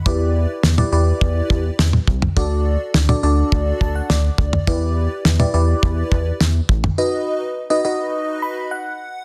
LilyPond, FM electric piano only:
\new Staff \with { instrumentName = "FM electric piano" } { \time 4/4 \key e \minor \tempo 4 = 104 << { r1 | r2 r8 a''16 fis''16 d''4 | r1 | r2 r8 b''8 fis''4 | } \\ { <e' g' b' d''>8. r8 <e' g' b' d''>16 <e' g' b' d''>4~ <e' g' b' d''>16 r4 r16 | <d' fis' a' d''>8. r8 <d' fis' a' d''>16 <d' fis' a' d''>4~ <d' fis' a' d''>16 r4 r16 | <e' g' b' d''>8. r8 <e' g' b' d''>16 <e' g' b' d''>4~ <e' g' b' d''>16 r4 r16 | <dis' fis' b' dis''>8. r8 <dis' fis' b' dis''>16 <dis' fis' b' dis''>4~ <dis' fis' b' dis''>16 r4 r16 | } >> }